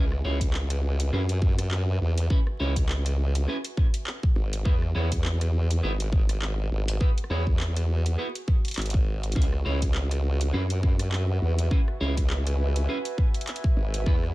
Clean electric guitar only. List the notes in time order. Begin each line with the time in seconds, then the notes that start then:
0.25 C#4 E4 G#4 C#5
1.13 C#4 E4 G#4 B4
2.30 C#4 E4 G#4 B4
2.60 C#4 E4 G#4 C#5
3.48 C#4 E4 G#4 B4
4.65 B3 E4 G#4 B4
4.95 B3 E4 G#4 C#5
5.83 B3 E4 G#4 B4
7.00 B3 E4 G#4 B4
7.30 B3 E4 G#4 C#5
8.18 B3 E4 G#4 B4
9.35 C#4 E4 G#4 B4
9.65 C#4 E4 G#4 C#5
10.53 C#4 E4 G#4 B4
11.71 C#4 E4 G#4 B4
12.01 C#4 E4 G#4 C#5
12.89 C#4 E4 G#4 B4
14.06 B3 E4 G#4 B4